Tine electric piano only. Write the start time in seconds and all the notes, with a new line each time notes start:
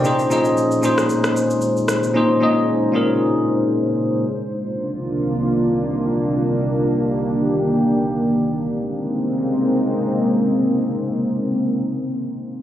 Already playing: D5 G5
0.03 A#2 C#4 D#4 G#4 C5
0.29 A#2 C#4 D#4 G#4 D#5
0.82 A#2 C#4 D#4 G#4 C5
2.13 A#2 C#4 D#4 G#4 C5
2.40 A#2 C#4 D#4 G#4 D#5
2.92 A#2 C#4 D#4 G#4 A#4